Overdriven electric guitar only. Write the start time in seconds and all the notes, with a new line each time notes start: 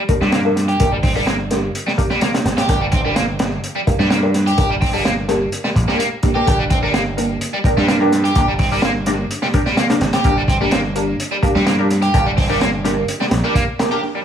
0.21 G3
0.32 A#3
0.69 G4
0.92 G3
1.03 C4
1.16 G3
1.27 A#3
1.87 G3
2.11 G3
2.22 A#3
2.58 G4
2.81 G3
2.92 C4
3.05 G3
3.16 A#3
3.76 G3
3.99 G3
4.10 A#3
4.47 G4
4.70 G3
4.81 C4
4.94 G3
5.05 A#3
5.64 G3
5.88 G3
5.99 A#3
6.35 G4
6.59 G3
6.70 C4
6.83 G3
6.94 A#3
7.54 G3
7.77 G3
7.88 A#3
8.24 G4
8.48 G3
8.59 C4
8.72 G3
8.83 A#3
9.43 G3
9.66 G3
9.78 A#3
10.13 G4
10.37 G3
10.48 C4
10.61 G3
10.72 A#3
11.32 G3
11.55 G3
11.67 A#3
12.02 G4
12.26 G3
12.37 C4
12.50 G3
12.61 A#3
13.21 G3
13.44 G3
13.55 A#3
13.91 G4
14.15 G3